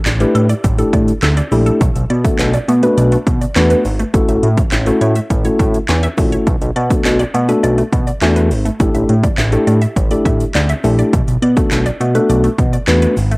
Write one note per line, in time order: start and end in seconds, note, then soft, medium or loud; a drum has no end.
0.06 0.25 A1 loud
0.06 0.20 D5 medium
0.06 snare medium
0.06 clap loud
0.06 closed hi-hat medium
0.06 shaker medium
0.20 0.34 G3 medium
0.20 0.47 A3 medium
0.20 0.47 D4 medium
0.20 0.47 E4 medium
0.20 0.47 G4 medium
0.20 0.47 B4 loud
0.20 closed hi-hat medium
0.20 shaker soft
0.35 0.54 A2 loud
0.35 0.49 A4 medium
0.35 closed hi-hat medium
0.35 shaker soft
0.50 0.64 D5 medium
0.50 closed hi-hat medium
0.50 shaker medium
0.64 0.83 A1 loud
0.64 0.78 G3 medium
0.64 kick medium
0.64 closed hi-hat medium
0.64 shaker medium
0.79 1.12 A3 medium
0.79 1.12 D4 medium
0.79 1.12 E4 medium
0.79 1.12 G4 medium
0.79 0.93 A4 medium
0.79 1.12 A4 loud
0.79 closed hi-hat medium
0.79 shaker soft
0.93 1.12 A2 loud
0.93 1.07 D5 medium
0.93 kick loud
0.93 closed hi-hat medium
0.93 shaker soft
1.08 closed hi-hat soft
1.08 shaker medium
1.23 1.42 D2 loud
1.23 1.36 A4 medium
1.23 snare loud
1.23 clap loud
1.23 closed hi-hat medium
1.23 shaker medium
1.37 1.51 D5 medium
1.37 closed hi-hat medium
1.37 shaker medium
1.52 1.71 A#1 medium
1.52 1.66 G3 medium
1.52 1.81 A3 medium
1.52 1.81 D4 medium
1.52 1.81 E4 medium
1.52 1.81 G4 medium
1.52 1.81 A4 medium
1.52 open hi-hat medium
1.52 shaker medium
1.66 1.80 A4 medium
1.66 closed hi-hat medium
1.66 shaker soft
1.81 1.90 B1 loud
1.81 1.95 A3 medium
1.81 kick loud
1.81 closed hi-hat medium
1.81 shaker medium
1.96 2.05 B1 medium
1.96 closed hi-hat medium
1.96 shaker medium
2.10 2.29 B2 loud
2.10 2.24 D5 medium
2.10 closed hi-hat medium
2.24 2.51 A3 medium
2.24 2.38 A3 medium
2.24 2.51 B3 medium
2.24 2.51 D4 medium
2.24 2.51 F#4 medium
2.24 2.51 A4 medium
2.24 kick loud
2.24 closed hi-hat medium
2.24 shaker medium
2.39 2.58 B1 loud
2.39 2.53 B4 medium
2.39 snare medium
2.39 clap loud
2.39 closed hi-hat medium
2.39 shaker medium
2.53 2.67 D5 medium
2.53 closed hi-hat medium
2.53 shaker medium
2.68 2.87 B2 loud
2.68 2.82 A3 medium
2.68 closed hi-hat medium
2.68 shaker medium
2.83 3.16 A3 medium
2.83 3.16 B3 medium
2.83 3.16 D4 medium
2.83 3.16 F#4 medium
2.83 2.97 B4 medium
2.83 3.16 B4 loud
2.83 closed hi-hat medium
2.83 shaker medium
2.97 3.16 B1 loud
2.97 3.11 D5 medium
2.97 closed hi-hat medium
2.97 shaker medium
3.12 3.26 A3 medium
3.12 closed hi-hat medium
3.12 shaker soft
3.26 3.45 B2 medium
3.26 kick loud
3.26 closed hi-hat medium
3.26 shaker soft
3.41 3.55 D5 medium
3.41 closed hi-hat soft
3.41 shaker medium
3.55 3.75 E2 loud
3.55 3.82 A3 medium
3.55 3.69 A3 medium
3.55 3.82 B3 medium
3.55 3.82 D4 medium
3.55 3.82 F#4 medium
3.55 3.82 B4 loud
3.55 snare loud
3.55 clap loud
3.55 closed hi-hat medium
3.55 shaker medium
3.70 3.84 B4 medium
3.70 closed hi-hat medium
3.70 shaker medium
3.85 4.04 G#1 medium
3.85 open hi-hat medium
3.85 shaker medium
3.99 4.13 A3 medium
3.99 closed hi-hat medium
3.99 shaker soft
4.14 4.23 A1 loud
4.14 4.47 A3 loud
4.14 4.47 C#4 medium
4.14 4.47 E4 medium
4.14 4.47 F#4 medium
4.14 4.47 A4 loud
4.14 4.28 C#5 medium
4.14 kick loud
4.14 closed hi-hat medium
4.14 shaker medium
4.28 4.38 A1 loud
4.28 4.42 E5 medium
4.28 closed hi-hat medium
4.28 shaker medium
4.43 4.62 A2 loud
4.43 closed hi-hat medium
4.57 4.71 C#5 medium
4.57 kick loud
4.57 closed hi-hat medium
4.57 shaker medium
4.72 4.91 A1 loud
4.72 4.86 E5 medium
4.72 snare medium
4.72 clap loud
4.72 closed hi-hat medium
4.72 shaker medium
4.86 5.13 A3 medium
4.86 5.00 A3 loud
4.86 5.13 C#4 medium
4.86 5.13 E4 medium
4.86 5.13 F#4 medium
4.86 5.13 A4 loud
4.86 closed hi-hat medium
4.86 shaker medium
5.01 5.20 A2 loud
5.01 5.15 C#5 medium
5.01 closed hi-hat medium
5.01 shaker medium
5.16 5.30 E5 medium
5.16 closed hi-hat medium
5.16 shaker medium
5.30 5.49 A1 loud
5.30 5.44 A3 medium
5.30 kick medium
5.30 closed hi-hat medium
5.30 shaker medium
5.45 5.78 A3 medium
5.45 5.78 C#4 medium
5.45 5.78 E4 medium
5.45 5.78 F#4 medium
5.45 5.78 A4 loud
5.45 5.59 C#5 medium
5.45 closed hi-hat medium
5.45 shaker soft
5.59 5.78 A2 loud
5.59 5.73 E5 medium
5.59 kick loud
5.59 closed hi-hat medium
5.59 shaker soft
5.74 closed hi-hat soft
5.74 shaker medium
5.89 6.08 E2 loud
5.89 6.02 C#5 medium
5.89 snare loud
5.89 clap loud
5.89 closed hi-hat medium
5.89 shaker medium
6.03 6.17 E5 loud
6.03 closed hi-hat medium
6.03 shaker medium
6.18 6.37 A#1 medium
6.18 6.47 A3 medium
6.18 6.32 A3 medium
6.18 6.47 C#4 medium
6.18 6.47 E4 medium
6.18 6.47 F#4 medium
6.18 6.47 A4 medium
6.18 kick medium
6.18 open hi-hat medium
6.18 shaker medium
6.32 6.46 C#5 medium
6.32 closed hi-hat medium
6.32 shaker soft
6.47 6.56 B1 loud
6.47 6.61 A3 medium
6.47 kick loud
6.47 closed hi-hat medium
6.47 shaker medium
6.62 6.71 B1 loud
6.62 closed hi-hat medium
6.62 shaker soft
6.76 6.95 B2 medium
6.76 6.90 D5 medium
6.76 closed hi-hat medium
6.90 7.17 A3 medium
6.90 7.04 A3 medium
6.90 7.17 B3 medium
6.90 7.17 D4 medium
6.90 7.17 F#4 medium
6.90 7.17 A4 loud
6.90 kick medium
6.90 closed hi-hat medium
6.90 shaker medium
7.05 7.24 B1 loud
7.05 7.19 B4 medium
7.05 snare medium
7.05 clap loud
7.05 closed hi-hat medium
7.05 shaker medium
7.20 7.33 D5 medium
7.20 closed hi-hat medium
7.20 shaker medium
7.34 7.53 B2 loud
7.34 7.48 A3 medium
7.34 closed hi-hat medium
7.34 shaker medium
7.49 7.82 A3 medium
7.49 7.82 B3 medium
7.49 7.82 D4 medium
7.49 7.82 F#4 medium
7.49 7.82 A4 loud
7.49 7.62 B4 medium
7.49 closed hi-hat medium
7.49 shaker medium
7.63 7.82 B1 loud
7.63 7.77 D5 medium
7.63 closed hi-hat medium
7.63 shaker medium
7.78 7.92 A3 medium
7.78 closed hi-hat medium
7.78 shaker soft
7.92 8.11 B2 medium
7.92 kick loud
7.92 closed hi-hat medium
7.92 shaker soft
8.07 8.21 D5 medium
8.07 closed hi-hat soft
8.07 shaker medium
8.22 8.52 E2 loud
8.22 8.48 A3 medium
8.22 8.35 A3 medium
8.22 8.48 B3 medium
8.22 8.48 D4 medium
8.22 8.48 F#4 medium
8.22 8.48 A4 loud
8.22 snare loud
8.22 clap loud
8.22 closed hi-hat medium
8.22 shaker medium
8.36 8.50 B4 medium
8.36 closed hi-hat medium
8.36 shaker medium
8.51 8.70 G#1 medium
8.51 open hi-hat medium
8.51 shaker medium
8.65 8.79 A3 medium
8.65 closed hi-hat medium
8.65 shaker soft
8.80 8.89 A1 loud
8.80 9.13 A3 loud
8.80 9.13 D4 medium
8.80 9.13 E4 medium
8.80 9.13 G4 medium
8.80 9.13 A4 loud
8.80 8.94 D5 medium
8.80 kick loud
8.80 closed hi-hat medium
8.80 shaker medium
8.94 9.04 A1 loud
8.94 9.08 E5 medium
8.94 closed hi-hat medium
8.94 shaker medium
9.09 9.28 A2 loud
9.09 closed hi-hat medium
9.24 9.37 D5 medium
9.24 kick loud
9.24 closed hi-hat medium
9.24 shaker medium
9.38 9.57 A1 loud
9.38 9.52 E5 medium
9.38 snare medium
9.38 clap loud
9.38 closed hi-hat medium
9.38 shaker medium
9.52 9.79 A3 medium
9.52 9.66 A3 medium
9.52 9.79 D4 medium
9.52 9.79 E4 medium
9.52 9.79 G4 medium
9.52 9.79 A4 loud
9.52 closed hi-hat medium
9.52 shaker medium
9.67 9.86 A2 medium
9.67 9.81 D5 medium
9.67 closed hi-hat medium
9.67 shaker medium
9.82 9.96 E5 medium
9.82 closed hi-hat medium
9.82 shaker medium
9.96 10.15 A1 loud
9.96 10.10 A3 medium
9.96 kick medium
9.96 closed hi-hat medium
9.96 shaker medium
10.11 10.44 A3 loud
10.11 10.44 D4 medium
10.11 10.44 E4 medium
10.11 10.44 G4 medium
10.11 10.44 A4 loud
10.11 10.25 D5 medium
10.11 closed hi-hat medium
10.11 shaker soft
10.25 10.44 A2 loud
10.25 10.39 E5 medium
10.25 kick loud
10.25 closed hi-hat medium
10.25 shaker soft
10.40 closed hi-hat soft
10.40 shaker medium
10.55 10.74 D2 loud
10.55 10.68 D5 medium
10.55 snare loud
10.55 clap loud
10.55 closed hi-hat medium
10.55 shaker medium
10.69 10.83 E5 medium
10.69 closed hi-hat medium
10.69 shaker medium
10.84 11.03 A#1 medium
10.84 11.13 A3 medium
10.84 10.98 A3 medium
10.84 11.13 D4 medium
10.84 11.13 E4 medium
10.84 11.13 G4 medium
10.84 11.13 A4 medium
10.84 open hi-hat medium
10.84 shaker medium
10.98 11.12 D5 medium
10.98 closed hi-hat medium
10.98 shaker soft
11.13 11.22 B1 loud
11.13 11.27 A3 medium
11.13 kick loud
11.13 closed hi-hat medium
11.13 shaker medium
11.28 11.37 B1 loud
11.28 closed hi-hat medium
11.28 shaker soft
11.42 11.61 B2 loud
11.42 11.56 D5 medium
11.42 closed hi-hat medium
11.56 11.83 A3 medium
11.56 11.70 A3 loud
11.56 11.83 B3 medium
11.56 11.83 D4 medium
11.56 11.83 F#4 medium
11.56 11.83 A4 medium
11.56 kick loud
11.56 closed hi-hat medium
11.56 shaker medium
11.71 11.90 B1 loud
11.71 11.85 B4 medium
11.71 snare medium
11.71 clap loud
11.71 closed hi-hat medium
11.71 shaker medium
11.86 11.99 D5 medium
11.86 closed hi-hat medium
11.86 shaker medium
12.00 12.19 B2 loud
12.00 12.14 A3 medium
12.00 closed hi-hat medium
12.00 shaker medium
12.15 12.48 A3 medium
12.15 12.48 B3 medium
12.15 12.48 D4 medium
12.15 12.48 F#4 medium
12.15 12.48 A4 loud
12.15 12.29 B4 medium
12.15 closed hi-hat medium
12.15 shaker medium
12.29 12.48 B1 loud
12.29 12.43 D5 medium
12.29 closed hi-hat medium
12.29 shaker medium
12.44 12.58 A3 medium
12.44 closed hi-hat medium
12.44 shaker soft
12.58 12.77 B2 loud
12.58 kick loud
12.58 closed hi-hat medium
12.58 shaker soft
12.73 12.87 D5 medium
12.73 closed hi-hat soft
12.73 shaker medium
12.87 13.07 E2 loud
12.87 13.14 A3 medium
12.87 13.01 A3 medium
12.87 13.14 B3 medium
12.87 13.14 D4 medium
12.87 13.14 F#4 medium
12.87 13.14 B4 loud
12.87 snare loud
12.87 clap loud
12.87 closed hi-hat medium
12.87 shaker medium
13.02 13.16 B4 medium
13.02 closed hi-hat medium
13.02 shaker medium
13.17 13.36 G#1 medium
13.17 open hi-hat medium
13.17 shaker medium
13.31 13.38 A3 medium
13.31 closed hi-hat medium
13.31 shaker soft